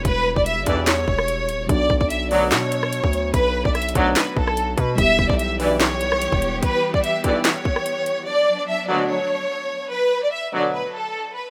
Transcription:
<<
  \new Staff \with { instrumentName = "Violin section" } { \time 4/4 \key b \minor \tempo 4 = 146 b'8. d''16 e''8 d''8 cis''2 | d''8. d''16 e''8 d''8 cis''2 | b'8. d''16 e''8 d''8 b'8 a'4 b'8 | e''8. d''16 e''8 d''8 cis''2 |
b'8. d''16 e''8 d''8 cis''2 | d''8. d''16 e''8 d''8 cis''2 | b'8. d''16 e''8 d''8 b'8 a'4 b'8 | }
  \new Staff \with { instrumentName = "Synth keys" } { \time 4/4 \key b \minor <g b e' g'>1 | <fis b d' fis'>1~ | <fis b d' fis'>1 | <g b e' g'>1~ |
<g b e' g'>1 | r1 | r1 | }
  \new Staff \with { instrumentName = "String section" } { \time 4/4 \key b \minor << { r1 | r1 | r1 | <e g'>1~ |
<e g'>1 | <fis d'>1 | r1 | } \\ { r1 | r1 | r1 | b1~ |
b1~ | b1 | r1 | } >> }
  \new Staff \with { instrumentName = "Brass ensemble" } { \clef bass \time 4/4 \key b \minor r4. <b,, g, e>8. r4. r16 | r4. <d, b, fis>8. r4. r16 | r4. <d, b, fis>8. r4. r16 | r4. <b,, g, e>8. r4. r16 |
r4. <b,, g, e>8. r4. r16 | r4. <d, b, fis>8. r4. r16 | r4. <d, b, fis>8. r4. r16 | }
  \new Staff \with { instrumentName = "808-style bass" } { \clef bass \time 4/4 \key b \minor e,,8. e,,8 g,,16 e,4 e,,4 d,,16 e,,16 | b,,8 b,,4. b,4~ b,16 d,8. | b,,8. b,,8. b,,8 r8 b,,4 b,8 | e,,8 e,,16 b,,2~ b,,8 e,,8. |
r1 | r1 | r1 | }
  \new DrumStaff \with { instrumentName = "Drums" } \drummode { \time 4/4 <hh bd>8. bd16 hh8 <hh bd>8 <hc hh sn>8 bd16 ss16 hh8 hh8 | <hh bd>8 bd16 bd16 hh8 hho8 <hc hh sn>8 hh16 ss16 hh16 bd16 hh8 | <hh bd>8. bd16 \tuplet 3/2 { <hh ss>16 hh16 hh16 <hh bd>16 r16 r16 } <hc hh sn>8 bd16 ss16 hh8 <hh bd>8 | <hh bd>8 bd16 bd16 hh8 hho8 <hc hh sn>8 hh16 ss16 hh16 bd16 hh8 |
<hh bd>8. bd16 hh8 <hh bd>8 <hc hh sn>8 bd16 ss16 hh8 hh8 | r4 r4 r4 r4 | r4 r4 r4 r4 | }
>>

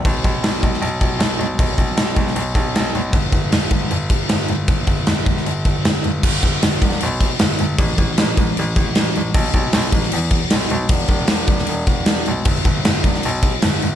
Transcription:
<<
  \new Staff \with { instrumentName = "Grand piano" } { \clef bass \time 4/4 \key g \lydian \tempo 4 = 154 b,,8 b,,8 b,,8 b,,8 b,,8 b,,8 b,,8 b,,8 | b,,8 b,,8 b,,8 b,,8 b,,8 b,,8 b,,8 b,,8 | g,,8 g,,8 g,,8 g,,8 g,,8 g,,8 g,,8 g,,8 | g,,8 g,,8 g,,8 g,,8 g,,8 g,,8 g,,8 g,,8 |
g,,8 g,,8 g,,8 e,,8 b,,4 g,,8 g,,8 | a,,8 a,,8 a,,8 a,,8 a,,8 a,,8 a,,8 a,,8 | b,,8 b,,8 b,,8 a,,8 e,4 b,,8 b,,8 | e,,8 e,,8 e,,8 e,,8 e,,8 r8 e,,8 b,,8 |
g,,8 g,,8 g,,8 e,,8 b,,4 g,,8 g,,8 | }
  \new DrumStaff \with { instrumentName = "Drums" } \drummode { \time 4/4 <cymc bd>8 <cymc bd>8 <cymc sn>8 <cymc bd>16 sn16 cymc8 <cymc bd>8 <cymc sn>8 cymc8 | <cymc bd>8 <cymc bd>8 <cymc sn>8 <cymc bd>16 sn16 cymc8 <cymc bd>8 <cymc sn>8 cymc8 | <cymc bd>8 <cymc bd>8 <cymc sn>8 <cymc bd>8 cymc8 <cymc bd>8 <cymc sn>8 cymc8 | <cymc bd>8 <cymc bd>8 <cymc sn>8 <cymc bd>16 sn16 cymc8 <cymc bd>8 <cymc sn>8 cymc8 |
<cymc bd>8 <cymc bd>8 <cymc sn>8 <cymc bd>16 sn16 cymc8 <cymc bd>8 <cymc sn>8 cymc8 | <cymc bd>8 <cymc bd>8 <cymc sn>8 <cymc bd>8 cymc8 <cymc bd>8 <cymc sn>8 cymc8 | <cymc bd>8 <cymc bd>8 <cymc sn>8 <cymc bd>16 sn16 cymc8 <cymc bd>8 <cymc sn>8 cymc8 | <cymc bd>8 <cymc bd>8 <cymc sn>8 <cymc bd>16 sn16 cymc8 <cymc bd>8 <cymc sn>8 cymc8 |
<cymc bd>8 <cymc bd>8 <cymc sn>8 <cymc bd>16 sn16 cymc8 <cymc bd>8 <cymc sn>8 cymc8 | }
>>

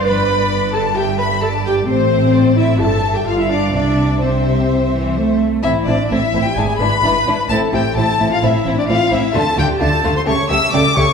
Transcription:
<<
  \new Staff \with { instrumentName = "Violin section" } { \time 4/4 \key c \major \tempo 4 = 130 d''2 e''4 d''4 | c''4 d''4 e''4 f''4 | e''4 e''2~ e''8 r8 | \key d \dorian e''8 d''8 e''8. g''16 gis''8 b''4. |
a''8 g''8 a''8. f''16 e''8. d''16 f''8 e''8 | a''8 g''8 a''8. c'''16 cis'''8 e'''8 d'''8 cis'''8 | }
  \new Staff \with { instrumentName = "Viola section" } { \time 4/4 \key c \major b'4. a'8 g'8 b'8 a'8 g'8 | c'4. e'8 a'8. g'16 f'16 e'16 d'8 | d'4 c'2~ c'8 r8 | \key d \dorian e'8 d'8 e'8. g'16 gis'8 b'4. |
a'8 g'8 a'8. f'16 e'8. d'16 f'8 e'8 | a'8 g'8 a'8. c''16 cis''8 e''8 d''8 cis''8 | }
  \new Staff \with { instrumentName = "Violin section" } { \time 4/4 \key c \major b''4. a''8 g''8 b''8 a''8 g''8 | c''4. e''8 a''8. g''16 f''16 e''16 d''8 | d''4 c''2~ c''8 r8 | \key d \dorian <c' e'>8 <c' e'>8 <c' e'>8 <c' e'>8 <d' e'>8 <d' e'>8 <d' e'>8 <d' e'>8 |
<c' e'>8 <c' e'>8 <c' e'>8 <c' e'>8 <c' e'>8 <c' e'>8 <c' e'>8 <c' e'>8 | <a f'>8 <a f'>8 <a f'>8 <a f'>8 <a g'>8 <a g'>8 <a g'>8 <a g'>8 | }
  \new Staff \with { instrumentName = "Cello section" } { \clef bass \time 4/4 \key c \major g,1 | a,2 g,4 g,4 | c4 c4. e8 a4 | \key d \dorian a,8 a,8 a,8 a,8 gis,8 gis,8 gis,8 gis,8 |
a,8 a,8 a,8 a,8 a,8 a,8 a,8 a,8 | d8 d8 d8 d8 cis8 cis8 cis8 cis8 | }
  \new Staff \with { instrumentName = "Double bass section" } { \clef bass \time 4/4 \key c \major g,,1 | a,,2 g,,4 g,,4 | c,2.~ c,8 r8 | \key d \dorian a,,8 a,,8 a,,8 a,,8 gis,,8 gis,,8 gis,,8 gis,,8 |
a,,8 a,,8 a,,8 a,,8 a,,8 a,,8 a,,8 a,,8 | d,8 d,8 d,8 d,8 cis,8 cis,8 cis,8 cis,8 | }
>>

